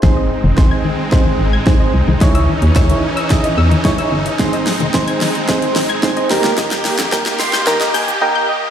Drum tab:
HH |----------------|xx-xxx-xxx-xxx-x|xxoxxxoxxxoxxxox|xxoxxxoxxxox----|
SH |----------------|----------------|----------------|xxxxxxxxxxxx----|
SD |o---o---o---o---|o---o---o---o---|o-o-o-o-o-o-o-oo|oooooooooo------|
BD |o---o---o---o---|o---o---o---o---|o---o---o---o---|o---o-----------|